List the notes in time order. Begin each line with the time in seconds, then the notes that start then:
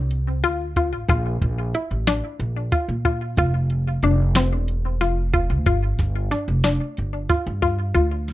Already playing: C2 C4
0.11 closed hi-hat, shaker
0.43 D2 F4, closed hi-hat, shaker
0.76 F4, kick, closed hi-hat
0.93 A1
1.08 A#1 F4, kick, closed hi-hat, shaker
1.42 A#1, kick, closed hi-hat
1.74 E4, closed hi-hat, shaker
1.91 A1
2.07 D4, snare, closed hi-hat, shaker
2.39 A#1, closed hi-hat, shaker
2.72 F4, kick, closed hi-hat, shaker
2.88 A#2
3.05 F4, kick, closed hi-hat
3.37 F1 F4, kick, closed hi-hat, shaker
3.70 closed hi-hat
4.03 F1 D4, closed hi-hat, shaker
4.35 C4, snare, closed hi-hat, shaker
4.53 E1
4.68 closed hi-hat, shaker
5.01 F1 F4, snare, closed hi-hat, shaker
5.33 F4, kick, closed hi-hat
5.50 D2
5.66 G1 F4, kick, closed hi-hat, shaker
5.99 G1, kick, snare, closed hi-hat
6.31 D4, snare, closed hi-hat
6.48 F1
6.64 D4, snare, closed hi-hat, shaker
6.97 G1, closed hi-hat
7.29 F4, kick, snare, closed hi-hat, shaker
7.47 G2
7.62 F4, kick, closed hi-hat, shaker
7.95 D2 F4, kick, closed hi-hat
8.28 snare, closed hi-hat